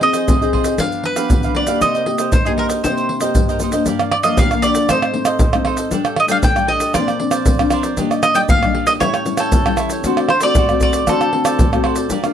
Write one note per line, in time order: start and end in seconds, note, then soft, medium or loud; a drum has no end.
0.00 0.25 F3 medium
0.00 0.36 C4 medium
0.00 0.36 D#4 medium
0.00 0.36 G#4 medium
0.00 0.75 D#5 medium
0.00 muted cavaquinho stroke soft
0.00 pandeiro soft
0.13 0.27 G#4 medium
0.13 0.26 C5 medium
0.13 0.25 D#5 medium
0.13 pandeiro medium
0.13 shaker medium
0.27 0.76 C3 medium
0.27 0.39 F4 soft
0.27 0.39 G#4 soft
0.27 0.39 C5 soft
0.27 0.40 D#5 soft
0.27 pandeiro medium
0.27 shaker medium
0.27 surdo medium
0.41 0.75 C4 medium
0.41 0.75 D#4 medium
0.41 0.75 G#4 medium
0.41 0.53 G#4 medium
0.41 0.53 C5 medium
0.41 0.52 D#5 medium
0.41 pandeiro soft
0.41 shaker soft
0.53 0.65 F4 medium
0.53 0.65 G#4 medium
0.53 0.65 C5 medium
0.53 0.64 D#5 medium
0.53 pandeiro medium
0.53 surdo medium
0.64 0.78 G#4 soft
0.64 0.78 C5 medium
0.64 0.77 D#5 medium
0.64 pandeiro medium
0.64 shaker medium
0.78 1.28 G2 medium
0.78 1.13 F3 medium
0.78 1.13 B3 medium
0.78 1.14 D4 medium
0.78 1.04 D4 soft
0.78 1.04 G4 soft
0.78 1.04 B4 soft
0.78 1.03 F5 medium
0.78 1.05 F5 medium
0.78 pandeiro medium
0.78 shaker medium
0.78 surdo medium
0.92 pandeiro soft
0.92 shaker soft
1.04 1.56 B4 medium
1.04 muted cavaquinho stroke soft
1.04 pandeiro medium
1.16 1.51 F3 medium
1.16 1.51 B3 medium
1.16 1.51 D4 medium
1.16 1.42 G4 medium
1.16 1.41 B4 medium
1.16 1.41 F5 medium
1.16 pandeiro medium
1.16 shaker medium
1.30 1.79 D3 medium
1.30 pandeiro medium
1.30 shaker medium
1.30 surdo loud
1.43 1.55 G4 medium
1.43 1.56 B4 medium
1.43 1.55 F5 medium
1.43 pandeiro soft
1.43 shaker soft
1.55 1.64 F3 medium
1.55 1.65 B3 medium
1.55 1.68 D4 soft
1.55 1.65 D4 medium
1.55 1.68 G4 soft
1.55 1.68 B4 medium
1.55 1.80 D5 medium
1.55 1.67 F5 medium
1.55 pandeiro medium
1.67 2.02 A#3 medium
1.67 2.02 D#4 medium
1.67 2.02 G4 medium
1.67 1.81 G4 medium
1.67 1.81 B4 medium
1.67 1.80 F5 medium
1.67 pandeiro medium
1.67 shaker medium
1.81 2.30 C3 medium
1.81 1.93 D#4 soft
1.81 1.94 A#4 soft
1.81 1.94 C5 medium
1.81 2.33 D#5 medium
1.81 1.94 D#5 medium
1.81 pandeiro medium
1.81 shaker medium
1.81 surdo medium
1.95 2.05 A#4 medium
1.95 2.05 C5 medium
1.95 2.06 D#5 medium
1.95 pandeiro soft
1.95 shaker soft
2.06 2.31 A#3 medium
2.06 2.31 D#4 medium
2.06 2.31 G4 medium
2.06 muted cavaquinho stroke soft
2.06 pandeiro medium
2.18 2.32 A#4 medium
2.18 2.32 C5 medium
2.18 2.31 D#5 medium
2.18 pandeiro medium
2.18 shaker medium
2.32 2.82 G2 medium
2.32 2.45 D#4 soft
2.32 2.45 A#4 soft
2.32 2.45 C5 medium
2.32 2.45 C5 soft
2.32 2.44 D#5 soft
2.32 pandeiro medium
2.32 shaker medium
2.32 surdo medium
2.45 2.80 A#3 medium
2.45 2.81 D#4 medium
2.45 2.81 G4 medium
2.45 2.51 G#4 medium
2.45 2.56 A#4 medium
2.45 2.57 C5 medium
2.45 2.57 D#5 medium
2.45 pandeiro soft
2.45 shaker soft
2.57 2.69 D#4 medium
2.57 2.69 A#4 medium
2.57 2.66 A#4 medium
2.57 2.68 C5 medium
2.57 2.68 D#5 medium
2.57 pandeiro medium
2.69 2.83 A#4 soft
2.69 2.82 C5 medium
2.69 2.82 D#5 medium
2.69 pandeiro medium
2.69 shaker medium
2.84 3.33 C3 medium
2.84 3.19 A#3 medium
2.84 3.09 D#4 soft
2.84 3.19 D#4 medium
2.84 3.19 G4 medium
2.84 3.09 A#4 soft
2.84 3.57 C5 medium
2.84 3.09 C5 soft
2.84 3.10 D#5 soft
2.84 pandeiro medium
2.84 shaker medium
2.84 surdo medium
2.97 pandeiro soft
2.97 shaker soft
3.09 muted cavaquinho stroke soft
3.09 pandeiro soft
3.21 3.56 A#3 soft
3.21 3.57 D#4 medium
3.21 3.57 G4 medium
3.21 3.48 A#4 medium
3.21 3.47 C5 medium
3.21 3.47 D#5 medium
3.21 pandeiro medium
3.21 shaker medium
3.35 3.84 G2 medium
3.35 pandeiro medium
3.35 shaker medium
3.35 surdo medium
3.49 3.61 A#4 medium
3.49 3.61 C5 medium
3.49 3.60 D#5 medium
3.49 pandeiro soft
3.49 shaker soft
3.60 3.69 A#3 medium
3.60 3.69 D#4 medium
3.60 3.73 D#4 soft
3.60 3.69 G4 medium
3.60 3.73 A#4 soft
3.60 3.73 C5 soft
3.60 3.72 D#5 medium
3.60 pandeiro medium
3.60 shaker medium
3.72 4.08 F3 medium
3.72 4.08 A#3 medium
3.72 4.08 D4 medium
3.72 3.87 A#4 soft
3.72 3.86 C5 medium
3.72 3.85 D#5 medium
3.72 pandeiro medium
3.72 shaker medium
3.86 4.36 G2 medium
3.86 3.99 G4 medium
3.86 3.99 A#4 medium
3.86 4.00 D5 medium
3.86 3.99 F5 medium
3.86 pandeiro medium
3.86 shaker medium
3.86 surdo soft
3.99 4.13 A#4 soft
3.99 4.13 D5 medium
3.99 4.12 F5 soft
3.99 pandeiro soft
3.99 tamborim medium
3.99 shaker soft
4.12 4.17 D5 medium
4.12 muted cavaquinho stroke soft
4.12 pandeiro medium
4.12 tamborim medium
4.23 4.46 F3 medium
4.23 4.46 A#3 medium
4.23 4.47 D4 medium
4.23 4.38 A#4 medium
4.23 4.38 D5 medium
4.23 4.38 D#5 medium
4.23 4.37 F5 medium
4.23 pandeiro medium
4.23 shaker medium
4.37 4.87 D3 medium
4.37 4.50 G4 medium
4.37 4.51 A#4 medium
4.37 4.51 D5 medium
4.37 4.65 F5 medium
4.37 4.51 F5 medium
4.37 pandeiro medium
4.37 shaker medium
4.37 surdo medium
4.51 4.86 F3 medium
4.51 4.86 A#3 medium
4.51 4.86 D4 medium
4.51 4.63 A#4 soft
4.51 4.64 D5 soft
4.51 4.64 F5 medium
4.51 pandeiro soft
4.51 tamborim medium
4.51 shaker soft
4.62 4.88 G4 medium
4.62 4.89 A#4 soft
4.62 4.90 D5 medium
4.62 4.89 D5 medium
4.62 4.90 F5 medium
4.62 pandeiro medium
4.62 shaker medium
4.75 pandeiro medium
4.75 shaker medium
4.89 5.38 A2 medium
4.89 5.11 A3 medium
4.89 5.11 C4 medium
4.89 5.02 D#4 medium
4.89 5.12 D#4 medium
4.89 5.02 A4 medium
4.89 5.63 C5 medium
4.89 5.02 C5 medium
4.89 5.01 D#5 medium
4.89 pandeiro medium
4.89 tamborim medium
4.89 shaker medium
4.89 surdo medium
5.02 5.14 A4 soft
5.02 5.14 C5 soft
5.02 5.14 D#5 soft
5.02 pandeiro soft
5.02 tamborim medium
5.02 shaker soft
5.14 5.39 A3 medium
5.14 5.39 C4 medium
5.14 5.39 D#4 medium
5.14 muted cavaquinho stroke soft
5.14 pandeiro soft
5.25 5.53 A4 medium
5.25 5.53 C5 medium
5.25 5.52 D#5 medium
5.25 pandeiro medium
5.25 tamborim medium
5.25 shaker medium
5.39 5.90 A2 medium
5.39 pandeiro medium
5.39 shaker medium
5.39 surdo loud
5.53 5.89 A3 medium
5.53 5.89 C4 medium
5.53 5.89 D#4 medium
5.53 5.65 A4 soft
5.53 5.66 C5 soft
5.53 5.65 D#5 soft
5.53 pandeiro soft
5.53 tamborim medium
5.53 shaker soft
5.65 5.78 D#4 medium
5.65 5.78 A4 medium
5.65 5.77 C5 medium
5.65 5.76 D#5 medium
5.65 pandeiro medium
5.65 tamborim medium
5.77 5.91 A4 soft
5.77 5.91 C5 soft
5.77 5.90 D#5 medium
5.77 pandeiro medium
5.77 shaker medium
5.91 6.41 A2 medium
5.91 6.26 G3 medium
5.91 6.27 A3 medium
5.91 6.04 D4 medium
5.91 6.27 D4 medium
5.91 6.04 A4 medium
5.91 6.05 D5 medium
5.91 6.04 G5 medium
5.91 pandeiro medium
5.91 shaker medium
5.91 surdo soft
6.05 6.17 A4 soft
6.05 6.17 D5 soft
6.05 6.17 G5 medium
6.05 pandeiro soft
6.05 tamborim medium
6.05 shaker soft
6.16 6.25 D#5 medium
6.16 muted cavaquinho stroke soft
6.16 pandeiro medium
6.16 tamborim medium
6.28 6.52 G3 medium
6.28 6.52 A3 soft
6.28 6.52 D4 medium
6.28 6.42 A4 medium
6.28 6.42 D5 medium
6.28 6.36 F5 medium
6.28 6.42 G5 medium
6.28 pandeiro medium
6.28 shaker medium
6.43 6.93 A2 medium
6.43 6.55 D4 medium
6.43 6.56 A4 medium
6.43 6.56 D5 medium
6.43 6.71 G5 loud
6.43 6.55 G5 medium
6.43 pandeiro medium
6.43 shaker medium
6.43 surdo medium
6.56 6.91 G3 medium
6.56 6.91 A3 medium
6.56 6.91 D4 medium
6.56 6.66 A4 soft
6.56 6.67 D5 soft
6.56 6.68 G5 soft
6.56 pandeiro soft
6.56 tamborim medium
6.56 shaker soft
6.67 6.92 D4 soft
6.67 6.93 A4 medium
6.67 6.94 D5 medium
6.67 6.93 D#5 medium
6.67 6.94 G5 medium
6.67 pandeiro medium
6.80 pandeiro medium
6.80 shaker medium
6.93 7.44 A#2 medium
6.93 7.10 F3 medium
6.93 7.10 C4 medium
6.93 7.06 D4 medium
6.93 7.11 D4 medium
6.93 7.07 A#4 medium
6.93 7.07 C5 medium
6.93 7.68 D5 medium
6.93 7.06 D5 medium
6.93 pandeiro medium
6.93 tamborim medium
6.93 shaker medium
6.93 surdo medium
7.07 7.19 A#4 soft
7.07 7.19 C5 soft
7.07 7.20 D5 soft
7.07 pandeiro soft
7.07 tamborim medium
7.07 shaker soft
7.19 7.45 F3 medium
7.19 7.55 C4 medium
7.19 7.55 D4 medium
7.19 muted cavaquinho stroke soft
7.19 pandeiro medium
7.31 7.58 A#4 medium
7.31 7.58 C5 medium
7.31 7.57 D5 medium
7.31 pandeiro medium
7.31 tamborim medium
7.31 shaker medium
7.46 7.58 F3 medium
7.46 pandeiro medium
7.46 shaker medium
7.46 surdo medium
7.59 7.94 F3 medium
7.59 7.94 C4 medium
7.59 7.94 D4 medium
7.59 7.71 A#4 soft
7.59 7.72 C5 medium
7.59 7.72 D5 soft
7.59 pandeiro soft
7.59 tamborim medium
7.59 shaker soft
7.70 7.84 D4 medium
7.70 7.84 A#4 medium
7.70 7.84 C5 medium
7.70 7.82 D5 medium
7.70 pandeiro medium
7.70 tamborim medium
7.70 shaker medium
7.83 7.97 A#4 soft
7.83 7.97 C5 medium
7.83 7.96 D5 soft
7.83 pandeiro medium
7.83 shaker medium
7.97 8.47 A#2 medium
7.97 8.32 G3 medium
7.97 8.10 D4 medium
7.97 8.33 D4 medium
7.97 8.33 D#4 medium
7.97 8.10 G4 medium
7.97 8.09 D5 medium
7.97 8.10 D#5 medium
7.97 pandeiro medium
7.97 shaker medium
7.97 surdo medium
8.11 8.22 G4 soft
8.11 8.22 D5 soft
8.11 8.22 D#5 medium
8.11 pandeiro soft
8.11 tamborim medium
8.11 shaker soft
8.22 8.37 D#5 loud
8.22 muted cavaquinho stroke soft
8.22 pandeiro medium
8.22 tamborim medium
8.22 shaker medium
8.34 8.57 G3 medium
8.34 8.58 D4 medium
8.34 8.58 D#4 medium
8.34 8.48 G4 medium
8.34 8.47 D5 medium
8.34 8.48 D#5 medium
8.34 8.40 G5 loud
8.34 pandeiro medium
8.34 shaker medium
8.49 8.98 A#2 medium
8.49 8.61 D4 medium
8.49 8.62 G4 medium
8.49 8.62 D5 medium
8.49 8.62 D#5 medium
8.49 8.89 F5 loud
8.49 pandeiro medium
8.49 shaker medium
8.49 surdo loud
8.63 8.97 G3 medium
8.63 8.98 D4 medium
8.63 8.98 D#4 medium
8.63 8.72 G4 soft
8.63 8.73 D5 medium
8.63 8.73 D#5 soft
8.63 pandeiro soft
8.63 tamborim medium
8.63 shaker soft
8.73 8.99 D4 medium
8.73 8.99 G4 soft
8.73 9.00 D5 soft
8.73 9.00 D#5 soft
8.73 pandeiro medium
8.87 8.92 D#5 medium
8.87 pandeiro medium
8.87 shaker medium
9.00 9.50 A2 medium
9.00 9.23 G3 medium
9.00 9.23 C#4 medium
9.00 9.12 E4 medium
9.00 9.23 E4 medium
9.00 9.13 A4 medium
9.00 9.39 C#5 loud
9.00 9.13 C#5 medium
9.00 9.13 G5 medium
9.00 pandeiro medium
9.00 tamborim medium
9.00 shaker medium
9.00 surdo medium
9.14 9.26 A4 soft
9.14 9.26 C#5 soft
9.14 9.26 G5 soft
9.14 pandeiro soft
9.14 tamborim medium
9.14 shaker soft
9.26 9.61 G3 medium
9.26 9.61 C#4 medium
9.26 9.61 E4 medium
9.26 muted cavaquinho stroke soft
9.26 pandeiro medium
9.26 shaker medium
9.37 9.76 A4 medium
9.37 9.65 A4 medium
9.37 9.64 C#5 medium
9.37 9.64 G5 medium
9.37 pandeiro medium
9.37 tamborim medium
9.37 shaker medium
9.52 10.01 E3 medium
9.52 pandeiro medium
9.52 shaker medium
9.52 surdo loud
9.66 10.00 G3 medium
9.66 10.00 C#4 medium
9.66 10.01 E4 medium
9.66 9.77 A4 soft
9.66 9.78 C#5 soft
9.66 9.78 G5 soft
9.66 pandeiro soft
9.66 tamborim medium
9.66 shaker soft
9.77 9.90 E4 medium
9.77 9.90 A4 medium
9.77 9.91 C#5 medium
9.77 9.90 G5 medium
9.77 pandeiro medium
9.77 tamborim medium
9.77 shaker medium
9.90 10.04 A4 soft
9.90 10.04 C#5 soft
9.90 10.03 G5 soft
9.90 pandeiro medium
9.90 shaker medium
10.04 10.53 D3 medium
10.04 10.28 A3 medium
10.04 10.29 C4 medium
10.04 10.16 F#4 medium
10.04 10.29 F#4 medium
10.04 10.17 A4 medium
10.04 10.17 C5 medium
10.04 10.17 D5 medium
10.04 pandeiro medium
10.04 shaker medium
10.04 surdo medium
10.17 10.29 A4 soft
10.17 10.29 C5 medium
10.17 10.29 D5 medium
10.17 pandeiro soft
10.17 tamborim medium
10.17 shaker soft
10.29 10.43 C5 medium
10.29 muted cavaquinho stroke soft
10.29 pandeiro medium
10.29 tamborim medium
10.41 10.64 A3 medium
10.41 10.64 C4 medium
10.41 10.64 F#4 medium
10.41 10.55 C5 medium
10.41 10.54 D5 medium
10.41 10.81 D5 loud
10.41 pandeiro medium
10.41 shaker medium
10.45 10.55 A4 medium
10.55 10.68 F#4 medium
10.55 10.69 A4 medium
10.55 10.69 C5 medium
10.55 pandeiro medium
10.55 shaker medium
10.55 surdo loud
10.59 10.69 D5 medium
10.69 11.03 A3 medium
10.69 11.03 C4 medium
10.69 11.04 F#4 medium
10.69 10.82 A4 soft
10.69 10.82 C5 soft
10.69 10.81 D5 medium
10.69 pandeiro soft
10.69 tamborim medium
10.69 shaker soft
10.80 11.06 F#4 soft
10.80 11.07 A4 soft
10.80 11.07 C5 soft
10.80 11.08 D5 medium
10.80 11.07 D5 medium
10.80 pandeiro medium
10.80 shaker medium
10.80 surdo medium
10.93 pandeiro medium
10.93 shaker medium
11.07 11.56 D3 medium
11.07 11.29 A3 medium
11.07 11.29 C4 medium
11.07 11.19 F#4 medium
11.07 11.29 F#4 medium
11.07 11.20 A4 medium
11.07 11.81 A4 medium
11.07 11.20 C5 medium
11.07 11.20 D5 medium
11.07 pandeiro medium
11.07 tamborim medium
11.07 shaker medium
11.07 surdo medium
11.21 11.33 A4 soft
11.21 11.33 C5 soft
11.21 11.32 D5 soft
11.21 pandeiro soft
11.21 tamborim medium
11.21 shaker soft
11.32 11.67 A3 medium
11.32 11.67 C4 medium
11.32 11.67 F#4 medium
11.32 muted cavaquinho stroke soft
11.32 pandeiro medium
11.45 11.71 A4 medium
11.45 11.70 C5 medium
11.45 11.70 D5 medium
11.45 pandeiro medium
11.45 tamborim medium
11.45 shaker medium
11.59 12.08 A2 medium
11.59 pandeiro medium
11.59 shaker medium
11.59 surdo loud
11.72 12.06 A3 medium
11.72 12.07 C4 medium
11.72 12.07 F#4 medium
11.72 11.84 A4 soft
11.72 11.84 C5 soft
11.72 11.84 D5 soft
11.72 pandeiro soft
11.72 tamborim medium
11.72 shaker soft
11.84 11.96 F#4 medium
11.84 11.96 A4 medium
11.84 11.97 C5 medium
11.84 11.96 D5 medium
11.84 pandeiro medium
11.84 tamborim medium
11.96 12.10 A4 soft
11.96 12.09 C5 soft
11.96 12.09 D5 soft
11.96 pandeiro medium
11.96 shaker medium
12.10 12.33 G3 medium
12.10 12.19 D4 medium
12.10 12.19 F4 medium
12.10 12.22 G4 medium
12.10 12.22 A#4 medium
12.10 12.20 A#4 medium
12.10 12.23 D5 medium
12.10 12.23 F5 medium
12.10 pandeiro medium
12.10 shaker medium
12.10 surdo medium
12.24 12.32 D4 medium
12.24 12.32 F4 medium
12.24 12.33 A#4 medium
12.24 12.33 A#4 soft
12.24 12.33 D5 soft
12.24 12.33 F5 soft
12.24 pandeiro soft
12.24 tamborim medium
12.24 shaker soft